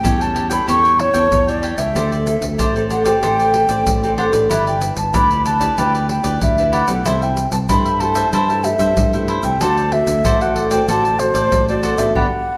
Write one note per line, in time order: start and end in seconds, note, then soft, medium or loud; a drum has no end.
0.00 0.15 G3 soft
0.00 0.15 C#4 soft
0.00 0.15 E4 medium
0.00 0.19 G4 medium
0.00 0.19 A4 medium
0.00 0.23 G5 loud
0.04 0.59 E2 medium
0.04 0.65 E3 soft
0.04 0.19 C#5 medium
0.04 0.19 G5 medium
0.04 pandeiro medium
0.04 shaker medium
0.04 surdo medium
0.20 0.47 G3 medium
0.20 0.48 C#4 medium
0.20 0.48 E4 medium
0.20 0.34 A4 soft
0.20 0.34 C#5 soft
0.20 0.35 G5 soft
0.20 0.51 A5 medium
0.20 pandeiro soft
0.20 shaker soft
0.34 0.50 G4 soft
0.34 0.50 A4 soft
0.34 0.49 C#5 soft
0.34 0.48 G5 soft
0.34 pandeiro medium
0.34 surdo soft
0.50 0.62 G3 medium
0.50 0.63 C#4 medium
0.50 0.63 E4 medium
0.50 0.66 A4 medium
0.50 0.66 C#5 medium
0.50 0.66 G5 medium
0.50 0.67 B5 medium
0.50 pandeiro medium
0.50 shaker medium
0.50 surdo soft
0.67 1.09 E2 medium
0.67 1.29 A2 medium
0.67 0.87 G3 medium
0.67 0.87 C#4 medium
0.67 0.87 E4 medium
0.67 0.82 G4 medium
0.67 0.82 A4 medium
0.67 0.83 C#5 medium
0.67 0.82 G5 medium
0.67 1.02 C#6 loud
0.67 pandeiro medium
0.67 shaker medium
0.67 surdo soft
0.83 0.97 A4 soft
0.83 0.98 C#5 soft
0.83 0.98 G5 soft
0.83 pandeiro soft
0.83 shaker soft
0.98 1.29 G3 soft
0.98 1.29 C#4 medium
0.98 1.30 E4 medium
0.98 1.51 C#5 loud
0.98 muted cavaquinho stroke soft
0.98 pandeiro medium
1.14 1.29 E2 medium
1.14 1.46 A4 medium
1.14 1.46 C#5 medium
1.14 1.45 G5 medium
1.14 pandeiro medium
1.14 shaker medium
1.14 surdo soft
1.31 1.72 E2 medium
1.31 1.92 E3 medium
1.31 pandeiro medium
1.31 shaker medium
1.31 surdo medium
1.47 1.90 G3 medium
1.47 1.91 E4 medium
1.47 1.62 A4 soft
1.47 1.62 C#5 soft
1.47 1.80 D5 medium
1.47 1.62 G5 soft
1.47 pandeiro soft
1.47 shaker soft
1.62 1.78 G4 medium
1.62 1.78 A4 medium
1.62 1.77 C#5 medium
1.62 1.76 G5 medium
1.62 pandeiro medium
1.78 1.92 C#2 medium
1.78 1.94 A4 soft
1.78 1.94 C#5 soft
1.78 2.63 E5 medium
1.78 1.93 G5 soft
1.78 pandeiro medium
1.78 shaker medium
1.78 surdo soft
1.94 2.36 D2 medium
1.94 2.56 D3 soft
1.94 2.14 C4 soft
1.94 2.10 D4 medium
1.94 2.14 G4 soft
1.94 2.10 G4 medium
1.94 2.14 A4 medium
1.94 2.11 C5 medium
1.94 2.10 D5 medium
1.94 pandeiro medium
1.94 shaker medium
1.94 surdo medium
2.12 2.25 G4 soft
2.12 2.26 C5 soft
2.12 2.26 D5 soft
2.12 pandeiro soft
2.12 shaker soft
2.26 2.69 C4 medium
2.26 2.70 G4 soft
2.26 2.70 A4 soft
2.26 muted cavaquinho stroke soft
2.26 pandeiro medium
2.26 shaker medium
2.41 2.56 D2 medium
2.41 pandeiro medium
2.41 shaker medium
2.41 surdo soft
2.58 3.13 A1 medium
2.58 3.20 A2 soft
2.58 2.73 D4 medium
2.58 2.74 G4 medium
2.58 2.74 C5 medium
2.58 2.74 D5 medium
2.58 pandeiro medium
2.58 shaker medium
2.58 surdo medium
2.75 3.02 C4 medium
2.75 3.02 G4 medium
2.75 2.89 G4 soft
2.75 3.03 A4 medium
2.75 2.89 C5 soft
2.75 2.90 D5 soft
2.75 pandeiro soft
2.75 shaker soft
2.90 3.05 D4 soft
2.90 3.05 G4 soft
2.90 3.04 C5 soft
2.90 3.03 D5 soft
2.90 3.06 F#5 medium
2.90 pandeiro soft
2.90 shaker medium
2.90 surdo soft
3.04 3.17 C4 medium
3.04 3.17 G4 medium
3.04 3.21 G4 medium
3.04 3.17 A4 medium
3.04 3.21 C5 medium
3.04 3.20 D5 medium
3.04 4.14 G5 loud
3.04 pandeiro medium
3.04 shaker medium
3.04 surdo soft
3.22 3.64 A1 medium
3.22 3.83 D3 soft
3.22 3.42 C4 soft
3.22 3.37 D4 medium
3.22 3.38 G4 medium
3.22 3.42 G4 soft
3.22 3.42 A4 medium
3.22 3.38 C5 medium
3.22 3.37 D5 medium
3.22 pandeiro medium
3.22 shaker medium
3.22 surdo medium
3.39 3.53 G4 soft
3.39 3.53 C5 soft
3.39 3.53 D5 soft
3.39 pandeiro soft
3.39 shaker soft
3.54 3.97 C4 soft
3.54 3.97 G4 soft
3.54 3.97 A4 medium
3.54 muted cavaquinho stroke soft
3.54 pandeiro medium
3.69 3.83 A1 medium
3.69 4.01 G4 soft
3.69 4.01 C5 medium
3.69 4.01 D5 medium
3.69 pandeiro medium
3.69 shaker medium
3.69 surdo soft
3.86 4.27 A1 medium
3.86 4.47 A2 medium
3.86 pandeiro medium
3.86 shaker medium
3.86 surdo medium
4.03 4.30 C4 medium
4.03 4.30 G4 medium
4.03 4.17 G4 soft
4.03 4.30 A4 medium
4.03 4.18 C5 soft
4.03 4.17 D5 soft
4.03 pandeiro soft
4.03 shaker soft
4.18 4.33 D4 medium
4.18 4.33 G4 medium
4.18 4.32 C5 medium
4.18 4.31 D5 medium
4.18 4.26 F#5 medium
4.18 pandeiro medium
4.32 4.47 A1 medium
4.32 4.76 D4 medium
4.32 4.77 E4 medium
4.32 4.49 G4 soft
4.32 4.77 B4 medium
4.32 4.49 C5 soft
4.32 4.48 D5 soft
4.32 pandeiro medium
4.32 shaker medium
4.32 surdo soft
4.49 4.91 G1 medium
4.49 5.11 G3 soft
4.49 4.65 E4 medium
4.49 4.65 G4 medium
4.49 4.65 B4 medium
4.49 4.65 D5 medium
4.49 4.66 E5 medium
4.49 pandeiro medium
4.49 shaker medium
4.49 surdo medium
4.66 4.80 G4 soft
4.66 4.81 B4 soft
4.66 4.81 D5 soft
4.66 4.97 G5 medium
4.66 pandeiro soft
4.66 shaker soft
4.81 5.24 D4 soft
4.81 5.25 E4 medium
4.81 5.25 B4 medium
4.81 muted cavaquinho stroke soft
4.81 pandeiro medium
4.81 shaker medium
4.97 5.11 G1 medium
4.97 5.17 A5 medium
4.97 pandeiro medium
4.97 shaker medium
4.97 surdo soft
5.13 5.68 D2 medium
5.13 5.75 D3 medium
5.13 5.28 E4 medium
5.13 5.29 G4 medium
5.13 5.29 B4 medium
5.13 5.29 D5 medium
5.13 5.45 B5 medium
5.13 pandeiro medium
5.13 shaker medium
5.13 surdo medium
5.30 5.57 D4 medium
5.30 5.57 E4 medium
5.30 5.44 G4 soft
5.30 5.57 B4 medium
5.30 5.45 B4 soft
5.30 5.45 D5 soft
5.30 pandeiro soft
5.30 shaker soft
5.45 5.60 E4 soft
5.45 5.60 G4 soft
5.45 5.60 B4 soft
5.45 5.59 D5 medium
5.45 5.80 A5 medium
5.45 pandeiro medium
5.45 shaker medium
5.45 surdo soft
5.60 5.72 D4 medium
5.60 5.72 E4 medium
5.60 5.76 G4 medium
5.60 5.76 B4 medium
5.60 5.72 B4 medium
5.60 5.76 D5 medium
5.60 pandeiro medium
5.60 shaker medium
5.60 surdo soft
5.78 6.19 D2 medium
5.78 6.39 G3 medium
5.78 5.97 D4 soft
5.78 5.92 E4 medium
5.78 5.97 E4 soft
5.78 5.93 G4 medium
5.78 5.93 B4 medium
5.78 5.97 B4 medium
5.78 5.93 D5 medium
5.78 6.09 G5 medium
5.78 pandeiro medium
5.78 shaker medium
5.78 surdo medium
5.94 6.08 G4 soft
5.94 6.08 B4 soft
5.94 6.08 D5 soft
5.94 pandeiro soft
5.94 shaker soft
6.09 6.40 D4 soft
6.09 6.40 E4 soft
6.09 6.40 B4 medium
6.09 6.40 G5 medium
6.09 muted cavaquinho stroke soft
6.09 pandeiro medium
6.23 6.38 D2 medium
6.23 6.56 G4 medium
6.23 6.56 B4 medium
6.23 6.55 D5 medium
6.23 pandeiro medium
6.23 shaker medium
6.23 surdo soft
6.41 6.83 D2 medium
6.41 7.02 D3 medium
6.41 6.75 E5 medium
6.41 pandeiro medium
6.41 shaker medium
6.41 surdo medium
6.58 6.85 D4 medium
6.58 6.85 E4 medium
6.58 6.71 G4 soft
6.58 6.72 B4 soft
6.58 6.85 B4 medium
6.58 6.72 D5 soft
6.58 pandeiro soft
6.58 shaker soft
6.72 6.87 E4 medium
6.72 6.88 G4 medium
6.72 6.87 B4 medium
6.72 6.86 D5 medium
6.72 7.07 F#5 medium
6.72 pandeiro medium
6.88 7.02 B1 medium
6.88 7.32 A3 soft
6.88 7.32 E4 medium
6.88 7.04 G4 soft
6.88 7.32 G4 medium
6.88 7.04 B4 soft
6.88 7.03 D5 soft
6.88 pandeiro medium
6.88 shaker medium
6.88 surdo soft
7.05 7.47 C2 medium
7.05 7.66 C3 soft
7.05 7.20 E4 medium
7.05 7.20 A4 medium
7.05 7.21 C5 medium
7.05 7.24 E5 medium
7.05 7.20 E5 medium
7.05 pandeiro medium
7.05 shaker medium
7.05 surdo medium
7.21 7.35 A4 soft
7.21 7.36 C5 soft
7.21 7.36 E5 soft
7.21 7.52 G5 medium
7.21 pandeiro soft
7.21 shaker soft
7.36 muted cavaquinho stroke soft
7.36 pandeiro medium
7.36 shaker medium
7.52 7.66 C2 medium
7.52 7.58 A5 medium
7.52 pandeiro medium
7.52 shaker medium
7.52 surdo soft
7.69 8.23 G2 medium
7.69 8.30 G3 medium
7.69 7.88 A3 soft
7.69 7.84 E4 medium
7.69 7.88 E4 medium
7.69 7.88 G4 medium
7.69 7.84 A4 medium
7.69 7.84 C5 medium
7.69 7.84 E5 medium
7.69 8.02 B5 medium
7.69 pandeiro medium
7.69 shaker medium
7.69 surdo medium
7.85 7.99 A4 soft
7.85 7.99 C5 soft
7.85 8.00 E5 soft
7.85 pandeiro soft
7.85 shaker soft
8.00 8.31 A3 medium
8.00 8.15 E4 soft
8.00 8.31 E4 medium
8.00 8.31 G4 medium
8.00 8.15 A4 soft
8.00 8.15 C5 medium
8.00 8.14 E5 medium
8.00 8.33 A5 medium
8.00 pandeiro soft
8.15 8.32 A4 medium
8.15 8.31 C5 medium
8.15 8.31 E5 medium
8.15 pandeiro medium
8.15 shaker medium
8.15 surdo soft
8.33 8.74 G2 medium
8.33 8.94 C3 soft
8.33 8.48 E4 medium
8.33 8.48 A4 medium
8.33 8.48 C5 medium
8.33 8.48 E5 medium
8.33 8.66 A5 medium
8.33 pandeiro medium
8.33 shaker medium
8.33 surdo soft
8.50 8.60 A3 medium
8.50 8.60 E4 soft
8.50 8.61 G4 medium
8.50 8.63 A4 soft
8.50 8.63 C5 soft
8.50 8.64 E5 soft
8.50 pandeiro soft
8.50 shaker soft
8.64 8.92 A3 soft
8.64 8.92 E4 soft
8.64 8.92 G4 medium
8.64 9.13 E5 medium
8.64 muted cavaquinho stroke soft
8.64 pandeiro medium
8.64 shaker medium
8.79 8.94 G2 medium
8.79 9.12 A4 medium
8.79 9.11 C5 medium
8.79 9.11 E5 medium
8.79 pandeiro medium
8.79 shaker medium
8.79 surdo soft
8.97 9.38 G2 medium
8.97 9.58 G3 medium
8.97 9.07 A3 medium
8.97 9.07 E4 soft
8.97 9.07 G4 medium
8.97 pandeiro medium
8.97 shaker medium
8.97 surdo medium
9.13 9.56 A3 medium
9.13 9.56 E4 medium
9.13 9.56 G4 medium
9.13 9.28 A4 soft
9.13 9.28 C5 soft
9.13 9.28 E5 soft
9.13 pandeiro soft
9.13 shaker soft
9.28 9.43 E4 medium
9.28 9.44 A4 medium
9.28 9.43 C5 medium
9.28 9.42 E5 medium
9.28 pandeiro medium
9.43 9.57 C2 medium
9.43 9.59 A4 soft
9.43 9.59 C5 soft
9.43 9.59 E5 soft
9.43 9.63 G5 medium
9.43 pandeiro medium
9.43 shaker medium
9.43 surdo soft
9.60 10.02 D2 medium
9.60 10.21 D3 soft
9.60 9.87 A3 medium
9.60 9.88 C4 soft
9.60 9.76 F#4 medium
9.60 9.88 F#4 medium
9.60 9.76 A4 medium
9.60 9.76 C5 medium
9.60 9.76 D5 medium
9.60 9.94 A5 loud
9.60 pandeiro medium
9.60 shaker medium
9.60 surdo medium
9.77 9.91 A4 soft
9.77 9.91 C5 soft
9.77 9.91 D5 soft
9.77 pandeiro soft
9.77 shaker soft
9.91 10.22 A3 medium
9.91 10.22 C4 medium
9.91 10.22 F#4 medium
9.91 10.43 E5 loud
9.91 muted cavaquinho stroke soft
9.91 pandeiro medium
10.07 10.21 D2 medium
10.07 pandeiro medium
10.07 shaker medium
10.07 surdo soft
10.24 10.79 A1 medium
10.24 10.85 A2 medium
10.24 10.39 F#4 medium
10.24 10.39 A4 medium
10.24 10.40 C5 medium
10.24 10.39 D5 medium
10.24 pandeiro medium
10.24 shaker medium
10.24 surdo medium
10.41 10.67 A3 medium
10.41 10.68 C4 medium
10.41 10.68 F#4 medium
10.41 10.54 A4 soft
10.41 10.55 C5 soft
10.41 10.55 D5 soft
10.41 10.70 F#5 medium
10.41 pandeiro soft
10.41 shaker soft
10.55 10.71 F#4 soft
10.55 10.71 A4 soft
10.55 10.70 C5 soft
10.55 10.69 D5 medium
10.55 pandeiro soft
10.55 surdo soft
10.70 10.82 A3 medium
10.70 10.82 C4 medium
10.70 10.82 F#4 medium
10.70 10.87 A4 medium
10.70 10.87 C5 medium
10.70 10.86 D5 medium
10.70 10.87 G5 medium
10.70 pandeiro medium
10.70 shaker medium
10.70 surdo soft
10.88 11.29 A1 medium
10.88 11.49 D3 medium
10.88 11.15 A3 medium
10.88 11.15 C4 medium
10.88 11.03 F#4 medium
10.88 11.16 F#4 medium
10.88 11.03 A4 medium
10.88 11.03 C5 medium
10.88 11.03 D5 medium
10.88 11.21 A5 medium
10.88 pandeiro medium
10.88 shaker medium
10.88 surdo soft
11.05 11.18 A4 soft
11.05 11.19 C5 soft
11.05 11.19 D5 soft
11.05 pandeiro soft
11.05 shaker soft
11.19 11.62 A3 soft
11.19 11.63 C4 soft
11.19 11.63 F#4 medium
11.19 11.68 C5 medium
11.19 muted cavaquinho stroke soft
11.19 pandeiro medium
11.19 shaker medium
11.34 11.49 A1 medium
11.34 11.67 A4 medium
11.34 11.66 C5 medium
11.34 11.66 D5 medium
11.34 pandeiro medium
11.34 shaker medium
11.34 surdo soft
11.52 11.93 A1 medium
11.52 12.13 A2 medium
11.52 pandeiro medium
11.52 shaker medium
11.52 surdo medium
11.68 11.95 A3 medium
11.68 11.96 C4 medium
11.68 11.96 F#4 medium
11.68 11.82 A4 soft
11.68 11.83 C5 soft
11.68 11.83 D5 soft
11.68 12.00 D5 medium
11.68 pandeiro soft
11.68 shaker soft
11.83 11.98 F#4 medium
11.83 11.99 A4 medium
11.83 11.98 C5 medium
11.83 11.97 D5 medium
11.83 pandeiro medium
11.83 shaker medium
11.98 12.13 A1 medium
11.98 12.14 B3 medium
11.98 12.14 D4 medium
11.98 12.15 F#4 medium
11.98 12.15 A4 soft
11.98 12.14 C5 soft
11.98 12.14 D5 soft
11.98 12.15 E5 medium
11.98 pandeiro medium
11.98 shaker medium
11.98 surdo soft
12.15 12.28 G1 medium
12.15 12.26 G3 medium
12.15 12.26 B3 medium
12.15 12.26 D4 medium
12.15 12.26 G4 medium
12.15 12.26 B4 medium
12.15 12.26 D5 medium
12.15 12.57 F#5 medium
12.15 surdo medium